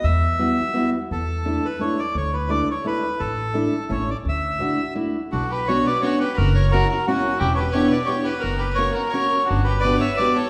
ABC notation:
X:1
M:3/4
L:1/16
Q:"Swing" 1/4=171
K:D
V:1 name="Bandoneon"
e8- e2 z2 | A6 B2 c2 d2 | c2 B2 d2 c2 B4 | A8 c2 d2 |
e8 z4 | [K:Bm] F2 B2 c2 d2 c2 B2 | ^A2 c2 A2 A2 F4 | G3/2 c/2 B2 c2 d2 c2 B2 |
^A2 B2 c2 A2 c4 | F2 B2 d2 e2 d2 c2 |]
V:2 name="Violin"
z12 | z12 | z12 | z12 |
z12 | [K:Bm] D2 G2 F2 B2 F2 G2 | F2 ^A2 F2 F2 C4 | E3/2 A/2 G2 G2 B2 G2 G2 |
F2 G2 ^A2 F2 A4 | D2 G2 B2 c2 B2 A2 |]
V:3 name="Steel-string acoustic guitar"
z4 [G,B,EF]2 z2 [G,B,EF]2 z2 | z4 [A,DEA]2 z2 [A,DEA]2 z2 | z4 [A,DEA]2 z2 [A,DEA]2 z2 | z4 [A,DEA]2 z2 [A,CEA]2 z2 |
z4 [A,DEF]2 z2 [A,DEF]2 z2 | [K:Bm] z4 [B,CDF]2 z2 [B,CDF]2 z2 | z4 [^A,CEF]2 z2 [A,CEF]2 z2 | z4 [B,DEG]2 z2 [B,DEG]2 z2 |
z4 [^A,CF^A]2 z2 [A,CFA]2 z2 | z4 [B,DFG]2 z2 [B,DFG]2 z2 |]
V:4 name="Upright bass" clef=bass
E,,8 z4 | E,,8 z4 | D,,8 z4 | A,,,8 A,,,4 |
D,,8 z4 | [K:Bm] B,,,8 z4 | F,,,8 z4 | E,,,8 z4 |
F,,,8 z4 | G,,,8 z4 |]